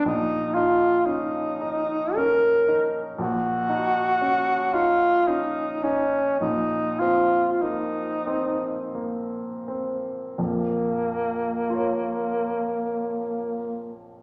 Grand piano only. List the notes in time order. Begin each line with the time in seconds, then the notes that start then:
0.05 A#1
0.56 D#4
1.07 C#4
1.61 D#4
2.17 C#4
2.68 D#4
3.18 A#1
3.69 D#4
4.21 C#4
4.74 D#4
5.28 C#4
5.84 D#4
6.41 A#1
7.01 C4
7.63 A#3
8.27 C4
8.95 A#3
9.68 C4
10.38 A#1 F2
11.70 F4 A#4
11.74 C#5